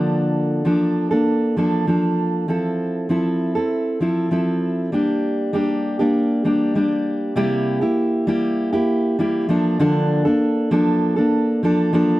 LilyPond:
\new Staff \with { instrumentName = "Steel-string acoustic guitar" } { \time 4/4 \key c \mixolydian \tempo 4 = 98 <d f bes d' a'>4 <f bes d' a'>8. <bes d' a'>8. <f bes d' a'>8 <f bes d' a'>4 | <f c' e' a'>4 <f c' e' a'>8. <c' e' a'>8. <f c' e' a'>8 <f c' e' a'>4 | <g bes d' g'>4 <g bes d' g'>8. <g bes d' g'>8. <g bes d' g'>8 <g bes d' g'>4 | <c g bes e' g'>8. <bes e' g'>8. <g bes e' g'>8. <bes e' g'>8. <g bes e' g'>8 <f bes d' a'>8 |
<d f bes d' a'>8. <bes d' a'>8. <f bes d' a'>8. <bes d' a'>8. <f bes d' a'>8 <f bes d' a'>8 | }